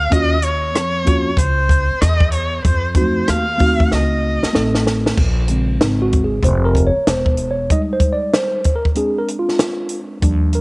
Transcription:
Already playing: erhu F5
0.10 upright bass D#2, tine electric piano A#3 C#4 F4 F#4, erhu D#5, kick, closed hi-hat
0.42 erhu C#5, closed hi-hat
0.75 upright bass F2, cross-stick, closed hi-hat
1.05 tine electric piano A#3 C#4 F4 F#4, kick, closed hi-hat
1.37 upright bass C#2, erhu C5, kick, closed hi-hat
1.69 kick, closed hi-hat
1.91 muted upright bass stroke
2.01 upright bass E2, erhu D#5, cross-stick, closed hi-hat
2.20 kick
2.32 erhu C#5, closed hi-hat
2.64 upright bass F2, erhu C5, kick, closed hi-hat
2.95 tine electric piano F#3 C4 D#4 F#4, erhu C5, kick, closed hi-hat
3.01 tine electric piano A3
3.28 upright bass D#2, erhu F5, cross-stick, closed hi-hat
3.58 tine electric piano A3 C4 D#4 F#4, kick, open hi-hat
3.80 kick
3.91 upright bass C#2, erhu D#5, snare
4.43 muted upright bass stroke, snare
4.53 upright bass A1, tine electric piano A3 C4 D#4 A4, snare
4.75 snare
4.87 snare
5.06 snare
5.17 upright bass A#1, kick, crash
5.48 tine electric piano C#3 G#3 C4, closed hi-hat
5.81 upright bass G#1, tine electric piano D#4, snare, closed hi-hat
6.02 tine electric piano F#4
6.12 kick, closed hi-hat
6.24 tine electric piano G#4
6.43 upright bass F1, tine electric piano C5, kick, closed hi-hat
6.65 tine electric piano A#4
6.75 kick, closed hi-hat
6.87 tine electric piano C#5
6.96 muted upright bass stroke
7.07 upright bass E1, tine electric piano C5, snare, closed hi-hat
7.26 kick
7.37 closed hi-hat
7.51 tine electric piano C#5
7.70 tine electric piano G3 G#3 D#4 D#5, kick, closed hi-hat
7.93 tine electric piano C5
8.00 kick, closed hi-hat
8.13 tine electric piano D5
8.33 tine electric piano C5, snare, closed hi-hat
8.64 kick, closed hi-hat
8.76 tine electric piano A#4
8.85 kick
8.95 tine electric piano G#3 C4 D4 G#4, closed hi-hat
9.18 tine electric piano A#4
9.28 closed hi-hat
9.39 tine electric piano F4
9.49 snare
9.59 snare, closed hi-hat
9.89 closed hi-hat
10.22 upright bass D#2, tine electric piano F3 G3 D4, kick, closed hi-hat
10.53 tine electric piano A#4, closed hi-hat

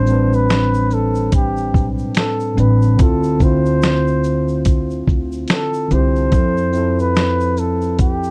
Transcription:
Already playing: upright bass A1, tine electric piano A2 G3 C4 D4 C5, flugelhorn C5
0.05 tine electric piano A2 G3 C4, shaker
0.09 tine electric piano D4 B4, shaker
0.33 flugelhorn B4, shaker
0.50 finger snap, snare, closed hi-hat, shaker
0.74 shaker
0.91 flugelhorn A4, shaker
1.15 shaker
1.32 flugelhorn G4, kick, closed hi-hat, shaker
1.57 shaker
1.74 upright bass B1, kick, shaker
1.99 shaker
2.15 flugelhorn A4, finger snap, snare, closed hi-hat, shaker
2.40 shaker
2.54 upright bass A1, tine electric piano A2 G3 C4
2.58 tine electric piano D4 B4, flugelhorn B4, closed hi-hat, shaker
2.82 shaker
2.96 upright bass D2, tine electric piano D3 C4, kick, closed hi-hat, shaker
3.00 tine electric piano E4 F4, flugelhorn A4
3.24 shaker
3.39 tine electric piano D3 C4, kick, shaker
3.43 tine electric piano E4 F4, flugelhorn C5
3.66 shaker
3.82 finger snap, snare, closed hi-hat, shaker
4.07 shaker
4.24 shaker
4.48 shaker
4.65 kick, closed hi-hat, shaker
4.90 shaker
5.07 upright bass D2, kick, closed hi-hat, shaker
5.32 shaker
5.48 flugelhorn A4, finger snap, snare, closed hi-hat, shaker
5.74 shaker
5.89 upright bass C2, tine electric piano D3 C4, closed hi-hat, shaker
5.93 tine electric piano E4 G4, flugelhorn C5
6.16 shaker
6.30 upright bass F2, tine electric piano F3 C4, kick, closed hi-hat, shaker
6.34 tine electric piano E4 A4
6.57 shaker
6.71 tine electric piano F3 C4, shaker
6.75 tine electric piano E4 A4, shaker
6.99 flugelhorn B4, shaker
7.16 finger snap, snare, closed hi-hat, shaker
7.41 shaker
7.57 flugelhorn A4, shaker
7.82 shaker
7.99 flugelhorn G4, kick, closed hi-hat, shaker
8.24 shaker

